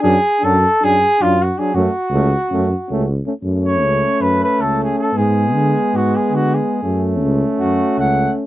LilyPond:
<<
  \new Staff \with { instrumentName = "Flugelhorn" } { \time 9/8 \key fis \minor \tempo 4. = 106 gis'4 a'4 gis'4 eis'8 fis'8 gis'8 | fis'2.~ fis'8 r4 | r8 cis''4. b'8 b'8 a'8 gis'8 a'8 | gis'2 fis'8 gis'8 fis'8 gis'4~ |
gis'8 r4. fis'4 fis''4 r8 | }
  \new Staff \with { instrumentName = "Euphonium" } { \time 9/8 \key fis \minor d'4 d'4 d'4 d'4 d'8 | cis'4 cis'4 cis'4 cis'4 cis'8 | cis'1~ cis'8 | b1~ b8 |
cis'1~ cis'8 | }
  \new Staff \with { instrumentName = "Trombone" } { \time 9/8 \key fis \minor fis4 fis4 fis4 fis4 fis8 | a4 a4 a4 a4 a8 | a1~ a8 | gis1~ gis8 |
a1~ a8 | }
  \new Staff \with { instrumentName = "Tuba" } { \clef bass \time 9/8 \key fis \minor fis,8 r8 fis,4 fis,4 fis,4. | fis,8 r8 cis,4 fis,4 cis,4. | fis,4 cis,4 fis,4 cis,4. | gis,4 d4 gis,4 d4. |
fis,4 cis,4 fis,4 cis,4. | }
>>